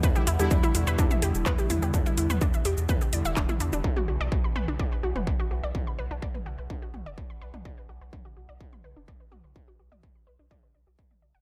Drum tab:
HH |--o---o---o---o-|--o---o---o---o-|----------------|----------------|
SH |xxxxxxxxxxxxxxxx|xxxxxxxxxxxxxxxx|----------------|----------------|
CP |------------x---|------------x---|----------------|----------------|
T2 |----o----o----o-|---o----o----o--|-o----o----o----|o----o----o----o|
BD |o---o---o---o---|o---o---o---o---|o---o---o---o---|o---o---o---o---|

HH |----------------|----------------|
SH |----------------|----------------|
CP |----------------|----------------|
T2 |----o----o----o-|---o----o----o--|
BD |o---o---o---o---|o---o---o---o---|